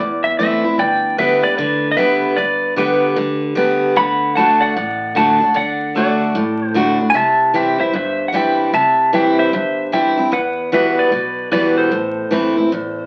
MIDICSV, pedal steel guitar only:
0, 0, Header, 1, 2, 480
1, 0, Start_track
1, 0, Key_signature, 1, "major"
1, 0, Tempo, 397614
1, 942, Time_signature, 4, 2, 24, 8
1, 15770, End_track
2, 0, Start_track
2, 0, Title_t, "Pedal steel guitar"
2, 0, Program_c, 0, 26
2, 0, Note_on_c, 0, 74, 92
2, 264, Note_off_c, 0, 74, 0
2, 289, Note_on_c, 0, 76, 101
2, 455, Note_off_c, 0, 76, 0
2, 469, Note_on_c, 0, 76, 111
2, 931, Note_off_c, 0, 76, 0
2, 956, Note_on_c, 0, 74, 85
2, 961, Note_on_c, 0, 79, 99
2, 1397, Note_off_c, 0, 74, 0
2, 1428, Note_on_c, 0, 71, 74
2, 1431, Note_off_c, 0, 79, 0
2, 1436, Note_on_c, 0, 76, 88
2, 1705, Note_off_c, 0, 71, 0
2, 1728, Note_on_c, 0, 71, 69
2, 1733, Note_on_c, 0, 74, 96
2, 1736, Note_off_c, 0, 76, 0
2, 1885, Note_off_c, 0, 71, 0
2, 1887, Note_off_c, 0, 74, 0
2, 1898, Note_on_c, 0, 71, 70
2, 1905, Note_on_c, 0, 74, 87
2, 2288, Note_off_c, 0, 71, 0
2, 2306, Note_off_c, 0, 74, 0
2, 2311, Note_on_c, 0, 75, 80
2, 2374, Note_on_c, 0, 71, 83
2, 2375, Note_on_c, 0, 76, 105
2, 2378, Note_off_c, 0, 75, 0
2, 2825, Note_off_c, 0, 71, 0
2, 2855, Note_on_c, 0, 74, 100
2, 2862, Note_on_c, 0, 71, 78
2, 2872, Note_off_c, 0, 76, 0
2, 3305, Note_off_c, 0, 74, 0
2, 3309, Note_off_c, 0, 71, 0
2, 3350, Note_on_c, 0, 67, 70
2, 3358, Note_on_c, 0, 71, 83
2, 4560, Note_off_c, 0, 67, 0
2, 4561, Note_off_c, 0, 71, 0
2, 4790, Note_on_c, 0, 78, 96
2, 4795, Note_on_c, 0, 83, 115
2, 5233, Note_off_c, 0, 78, 0
2, 5236, Note_off_c, 0, 83, 0
2, 5256, Note_on_c, 0, 78, 83
2, 5273, Note_on_c, 0, 81, 95
2, 5539, Note_off_c, 0, 78, 0
2, 5560, Note_on_c, 0, 74, 85
2, 5575, Note_on_c, 0, 78, 104
2, 5578, Note_off_c, 0, 81, 0
2, 5729, Note_off_c, 0, 74, 0
2, 5749, Note_off_c, 0, 78, 0
2, 5755, Note_on_c, 0, 74, 74
2, 5762, Note_on_c, 0, 78, 95
2, 6196, Note_off_c, 0, 74, 0
2, 6217, Note_off_c, 0, 78, 0
2, 6231, Note_on_c, 0, 78, 89
2, 6243, Note_on_c, 0, 81, 102
2, 6674, Note_off_c, 0, 78, 0
2, 6711, Note_on_c, 0, 74, 83
2, 6722, Note_on_c, 0, 78, 108
2, 6728, Note_off_c, 0, 81, 0
2, 7154, Note_off_c, 0, 74, 0
2, 7193, Note_on_c, 0, 69, 68
2, 7207, Note_off_c, 0, 78, 0
2, 7212, Note_on_c, 0, 74, 88
2, 8057, Note_off_c, 0, 74, 0
2, 8057, Note_on_c, 0, 72, 88
2, 8401, Note_off_c, 0, 69, 0
2, 8410, Note_off_c, 0, 72, 0
2, 8570, Note_on_c, 0, 80, 70
2, 8629, Note_off_c, 0, 80, 0
2, 8633, Note_on_c, 0, 76, 85
2, 8652, Note_on_c, 0, 81, 116
2, 9075, Note_off_c, 0, 76, 0
2, 9118, Note_on_c, 0, 76, 80
2, 9125, Note_on_c, 0, 79, 85
2, 9132, Note_off_c, 0, 81, 0
2, 9391, Note_off_c, 0, 76, 0
2, 9395, Note_off_c, 0, 79, 0
2, 9412, Note_on_c, 0, 72, 72
2, 9423, Note_on_c, 0, 76, 94
2, 9576, Note_off_c, 0, 72, 0
2, 9599, Note_off_c, 0, 76, 0
2, 9603, Note_on_c, 0, 72, 77
2, 9611, Note_on_c, 0, 76, 94
2, 9982, Note_off_c, 0, 72, 0
2, 9999, Note_on_c, 0, 78, 72
2, 10027, Note_off_c, 0, 76, 0
2, 10063, Note_off_c, 0, 78, 0
2, 10082, Note_on_c, 0, 76, 78
2, 10090, Note_on_c, 0, 79, 97
2, 10520, Note_off_c, 0, 76, 0
2, 10543, Note_off_c, 0, 79, 0
2, 10548, Note_on_c, 0, 76, 85
2, 10555, Note_on_c, 0, 81, 98
2, 10993, Note_off_c, 0, 76, 0
2, 10997, Note_off_c, 0, 81, 0
2, 11035, Note_on_c, 0, 76, 76
2, 11045, Note_on_c, 0, 79, 87
2, 11310, Note_off_c, 0, 76, 0
2, 11334, Note_on_c, 0, 72, 73
2, 11341, Note_on_c, 0, 76, 87
2, 11344, Note_off_c, 0, 79, 0
2, 11497, Note_off_c, 0, 72, 0
2, 11509, Note_off_c, 0, 76, 0
2, 11516, Note_on_c, 0, 72, 72
2, 11524, Note_on_c, 0, 76, 92
2, 11957, Note_off_c, 0, 72, 0
2, 11978, Note_off_c, 0, 76, 0
2, 11991, Note_on_c, 0, 76, 83
2, 11994, Note_on_c, 0, 79, 106
2, 12435, Note_off_c, 0, 76, 0
2, 12435, Note_off_c, 0, 79, 0
2, 12467, Note_on_c, 0, 71, 90
2, 12471, Note_on_c, 0, 78, 96
2, 12912, Note_off_c, 0, 71, 0
2, 12960, Note_on_c, 0, 71, 68
2, 12962, Note_off_c, 0, 78, 0
2, 12969, Note_on_c, 0, 76, 87
2, 13233, Note_off_c, 0, 71, 0
2, 13264, Note_off_c, 0, 76, 0
2, 13266, Note_on_c, 0, 71, 79
2, 13268, Note_on_c, 0, 74, 96
2, 13870, Note_off_c, 0, 71, 0
2, 13902, Note_off_c, 0, 74, 0
2, 13906, Note_on_c, 0, 71, 80
2, 13917, Note_on_c, 0, 74, 92
2, 14185, Note_off_c, 0, 71, 0
2, 14191, Note_off_c, 0, 74, 0
2, 14216, Note_on_c, 0, 72, 83
2, 14217, Note_on_c, 0, 69, 62
2, 15770, Note_off_c, 0, 69, 0
2, 15770, Note_off_c, 0, 72, 0
2, 15770, End_track
0, 0, End_of_file